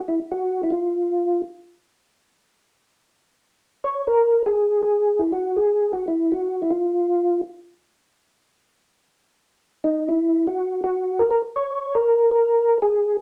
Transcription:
0.08 E4
0.32 F#4
0.63 E4
0.70 F4
3.84 C#5
4.07 A#4
4.46 G#4
4.83 G#4
5.19 E4
5.32 F#4
5.56 G#4
5.93 F#4
6.08 E4
6.32 F#4
6.62 E4
6.70 F4
9.84 D#4
10.09 E4
10.47 F#4
10.84 F#4
11.19 A#4
11.31 A#4
11.56 C#5
11.95 A#4
12.31 A#4
12.82 G#4

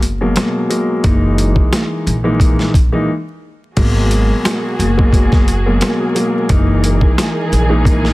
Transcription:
Already playing: F#1
0.02 closed hi-hat
0.21 B2 F#3 G#3 A#3
0.36 snare, closed hi-hat
0.69 B2 F#3 G#3 A#3, closed hi-hat
1.04 F#1 E3 G#3 A#3 D#4, kick, closed hi-hat
1.38 closed hi-hat
1.56 kick
1.73 snare, closed hi-hat
2.06 A#1, closed hi-hat
2.24 E3 G#3 A#3 D#4
2.40 kick, closed hi-hat
2.59 snare
2.74 kick, closed hi-hat
2.92 E3 G#3 A#3 D#4
3.76 G#1 B2 F#3 G#3 A#3 F#4 G#4 A#4, kick, closed hi-hat, crash
4.11 closed hi-hat
4.45 snare, closed hi-hat
4.79 F#1, closed hi-hat
4.97 B2 F#3 G#3 A#3, kick
5.13 kick, closed hi-hat
5.32 kick, snare
5.48 closed hi-hat
5.66 B2 F#3 G#3 A#3
5.81 snare, closed hi-hat
6.15 B2 F#3 G#3 A#3, closed hi-hat
6.49 F#1 E3 G#3 A#3 D#4 G#4, kick, closed hi-hat
6.84 closed hi-hat
7.01 kick
7.18 snare, closed hi-hat
7.52 A#1, closed hi-hat
7.69 E3 G#3 A#3 D#4
7.85 kick, closed hi-hat
8.05 snare

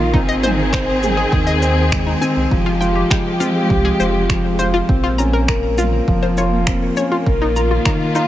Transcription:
Already playing: A#1 D#3 A#3 D#4 F4 A#4
0.13 G#1 C4 D#4 G#4, kick
0.29 D#5
0.43 D#4 C5, mid tom, shaker
0.73 C5, finger snap, kick
1.03 G#4, mid tom, shaker
1.17 G#4
1.32 D#2 D#3 G#4, kick
1.47 D#5
1.62 C5, shaker
1.92 G#3, finger snap, kick
2.07 D#4
2.21 C4 G#5, shaker
2.36 C2
2.51 F1 F3 G#3 G4, kick
2.66 F4
2.81 F4 G5, shaker
2.95 G4
3.10 G#3 G5, finger snap, kick
3.40 C4 F4, shaker
3.70 C2 G4, kick
3.85 G#4
3.99 F1 F4 C5, shaker
4.29 F3, finger snap, kick
4.59 F4 C5, shaker
4.74 F4
4.89 A#1 A#3 C4, kick
5.04 F4
5.18 C#4 A#5, shaker
5.33 A#4
5.48 A#4 A#5, finger snap, kick
5.78 F4, mid tom, shaker
6.08 F1 F3, kick
6.23 C5
6.37 F4 C#5, shaker
6.67 C4, finger snap, kick
6.97 C#4 C#5, shaker
7.12 F4
7.26 A#1 D#3 F4 A#4, kick
7.41 D#4
7.56 F4 A#5, shaker
7.71 F4
7.85 D#3 A#5, finger snap, kick
8.15 D#4 F4, shaker

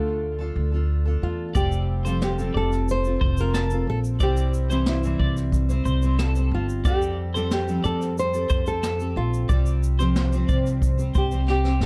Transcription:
Already playing: D2 D3 A3 D4 F4 A4
0.39 D4 F4 A4
0.56 D2
0.72 D4 F4 A4
1.06 D4 F4 A4
1.22 E2 F4
1.55 F1 G3 C4 F4 G4 A4 D5, kick, shaker
1.72 shaker
2.05 F3 G3 C4 F4 A4 C5, shaker
2.22 G4, snare, shaker
2.38 F3 G3 C4 F4 A4, shaker
2.55 F1 A4 D5
2.72 snare, shaker
2.89 C5, shaker
3.04 C4 F4 A4, shaker
3.21 F1 C5, kick
3.37 C4 F4 A#4, shaker
3.54 A5, snare, shaker
3.70 C4 F4 A4, shaker
3.87 A#1 A4
4.04 shaker
4.20 C2 G3 C4 E4 G4 C5 D5, kick, shaker
4.37 shaker
4.54 shaker
4.69 C3 E3 G3 C4 E4 C5, shaker
4.86 E4, snare, shaker
5.03 C3 E3 G3 C4 E4 C5, shaker
5.19 C2 D5, kick
5.37 snare, shaker
5.52 kick, shaker
5.69 G3 C4 E4 C5, shaker
5.85 C2 C5, shaker
6.02 G3 C4 E4 C5, shaker
6.19 A4, snare, shaker
6.35 G3 C4 C5, shaker
6.51 G1 F4
6.69 shaker
6.85 F2 G3 C4 G4 A4 D5, kick, shaker
7.02 shaker
7.34 F3 G3 C4 G4 A4 C5, shaker
7.51 G4, snare, shaker
7.67 F3 G3 C4 G4 A4, shaker
7.84 F2 A4 D5, shaker
8.02 snare, shaker
8.18 C5, shaker
8.33 C4 G4 A4, shaker
8.50 F2 C5, kick, shaker
8.66 C4 G4 A4, shaker
8.83 A4, snare, shaker
8.99 C4 G4 A4, shaker
9.16 A#1 F4
9.34 shaker
9.48 C2 G3 C4 G4 C5 D5, kick, shaker
9.66 shaker
9.83 shaker
9.99 C3 F3 G3 C4 G4 C5, shaker
10.16 snare, shaker
10.32 C3 F3 G3 C4 G4 C5, shaker
10.49 C2 D5, kick, shaker
10.66 snare, shaker
10.82 kick, shaker
10.97 G3 C4 G4 C5, shaker
11.15 C2 G4 C5, kick, shaker
11.31 G3 C4 G4 C5, shaker
11.48 G4, snare
11.64 G3 C4 G4 C5, snare
11.80 G1, snare

